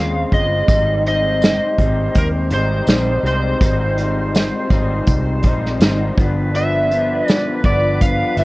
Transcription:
Already playing: D#2 C#3 G#3 C4 F4 F5
0.31 G1 C#3 G#3 C4 F4 D#5, kick, closed hi-hat
0.67 G#1 G#2 D#3 G3 C4 D#4 G4 C5, kick, closed hi-hat
1.04 G#2 G3 C4 D#4 D#5, closed hi-hat
1.41 snare, closed hi-hat, tambourine
1.77 G#1 G#2 G3 C4 D#4, kick, closed hi-hat
2.15 D#2 A#4, kick, closed hi-hat
2.50 G#1 G#2 G3 C4 D#4 C5, closed hi-hat
2.87 A#1 G#2 G3 C4 D#4, snare, closed hi-hat, tambourine
3.23 C2 G#2 G3 C4 D#4, closed hi-hat
3.27 C5
3.60 G#1 G#2 G3 C4 D#4 F4, kick, closed hi-hat
3.97 G#2 G3 C4 D#4, closed hi-hat
4.35 snare, closed hi-hat, tambourine
4.70 G#1 G#2 G3 C4 D#4, kick, closed hi-hat
5.07 C2, kick, closed hi-hat
5.43 A#1 G#2 G3 C4, kick, closed hi-hat
5.47 D#4
5.66 snare
5.79 G#1 G#2 G3 C4 D#4, snare, closed hi-hat, tambourine
6.16 G1 G2 D3 F3 G3 B3 F4 B4, kick, closed hi-hat
6.20 D4
6.54 G2 F3 B3 D4 E5, closed hi-hat
6.89 G2 F3 B3 D4, closed hi-hat
7.28 D5, snare, closed hi-hat, tambourine
7.63 G1 G2 F3 B3 D4 D5, kick, closed hi-hat
8.01 F5, kick, closed hi-hat
8.37 G1 G2 F3 B3 D4 E5, closed hi-hat

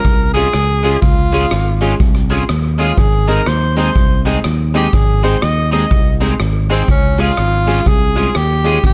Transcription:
Already playing: A#4
0.05 C2 F4 G#4, kick
0.34 G#3 C#4 F4 G#4, closed hi-hat
0.53 C#2, cross-stick
0.83 G#3 C#4 F4 G#4, closed hi-hat
1.01 C#2 F4, kick
1.32 G#3 C#4 F4 G#4, closed hi-hat
1.51 G#1, muted clean electric guitar stroke, cross-stick
1.81 G#3 C#4 F4 G#4, closed hi-hat
2.00 C2, kick
2.15 cross-stick
2.30 G#3 C#4 F4 G#4, closed hi-hat
2.49 D#2, cross-stick
2.78 G#3 C#4 F4 G#4, closed hi-hat
2.98 G#1 G#4, kick
3.27 G#3 C4 D#4 G#4 A#4, closed hi-hat
3.46 D#2 C5, cross-stick
3.76 G#3 C4 D#4 G#4 C5, closed hi-hat
3.96 C2 D#4 G#4, kick
4.25 G#3 C4 D#4 G#4, closed hi-hat
4.44 D#2, cross-stick
4.74 G#3 C4 D#4 G4 G#4, closed hi-hat
4.93 G#1 G#4, kick
5.23 G#3 C4 D#4 G#4 C5, closed hi-hat
5.42 D#2 D#5, muted clean electric guitar stroke, cross-stick
5.71 G#3 C4 D#4 G#4 D#5, closed hi-hat
5.91 C2 D#4 G#4, kick
6.20 G#3 C4 D#4 G#4, closed hi-hat
6.40 G#1, cross-stick
6.70 G#3 C4 D#4 G#4, open hi-hat
6.88 C#2 C#4, kick, hi-hat pedal
7.18 G#3 C#4 F4 G#4, closed hi-hat
7.37 G#1, cross-stick
7.66 G#3 C#4 F4 G#4, closed hi-hat
7.86 C2 F4 G#4, kick
8.15 G#3 C#4 F4 G#4, closed hi-hat
8.35 D#2 G4, cross-stick
8.64 G#3 C#4 F4 G#4, closed hi-hat
8.84 G#1 G#4, kick

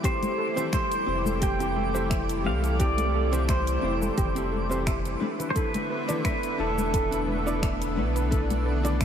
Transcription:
Already playing: E3 G3 A3 D6
0.03 C4 E4 G4 A4 C5, kick, closed hi-hat, shaker
0.23 closed hi-hat, high conga, shaker
0.38 A4
0.56 C4 E4 G4 A4 C5, closed hi-hat, low conga, shaker
0.73 C5 E5, finger snap, kick, closed hi-hat, high conga, shaker
0.92 closed hi-hat, shaker
1.06 F1 C4 E4 G4 C5
1.26 A4, high conga, shaker
1.41 G4 G5, kick, closed hi-hat, shaker
1.59 C4 E4 G4 A4, closed hi-hat, shaker
1.76 A4, high conga
1.94 C4 E4 G4 A4 C5, shaker
2.10 E5, finger snap, kick, closed hi-hat, shaker
2.29 closed hi-hat, shaker
2.44 C2 E3 C4 G4 A4 F5, high conga
2.64 A4, closed hi-hat, shaker
2.79 C4 E4 G4 A4 D5, kick, closed hi-hat, shaker
2.97 closed hi-hat, high conga, shaker
3.14 A4
3.32 C4 E4 G4 A4 C5, closed hi-hat, low conga, shaker
3.48 C5 E5, finger snap, kick, closed hi-hat, high conga, shaker
3.67 closed hi-hat, shaker
3.82 F1 C4 E4 G4 C5
4.02 A4, high conga, shaker
4.17 F1 G4, kick, closed hi-hat, low conga, shaker
4.35 C4 E4 G4 A4, closed hi-hat, shaker
4.52 A4, high conga
4.69 C4 E4 G4 A4 C5, shaker
4.87 E5, finger snap, kick, closed hi-hat, shaker
5.05 closed hi-hat, shaker
5.20 D3 A3 B3 D4 E4 A4 B4, high conga
5.40 B4, closed hi-hat, low conga, shaker
5.50 C5
5.55 D4 E4 A4 B4, kick, closed hi-hat, shaker
5.74 closed hi-hat, high conga, shaker
5.90 B4
6.08 D4 E4 A4 B4 D5, closed hi-hat, low conga, shaker
6.25 B4 E5, finger snap, kick, closed hi-hat, high conga, shaker
6.43 closed hi-hat, shaker
6.58 E1 D4 E4 A4 D5
6.78 B4, high conga, shaker
6.94 A4, kick, closed hi-hat, shaker
7.11 D4 E4 A4 B4, closed hi-hat, shaker
7.28 B4, high conga
7.46 D4 E4 A4 B4 D5, shaker
7.63 E5, finger snap, kick, closed hi-hat, shaker
7.82 closed hi-hat, shaker
7.96 B1 D4 E4 A4 B4, high conga
8.16 B4, closed hi-hat, shaker
8.31 D4 E4 A4 B4, kick, closed hi-hat, shaker
8.50 closed hi-hat, high conga, shaker
8.66 B4
8.84 D4 E4 A4 B4 D5, closed hi-hat, low conga, shaker
9.00 E5, finger snap, kick, closed hi-hat, high conga, shaker

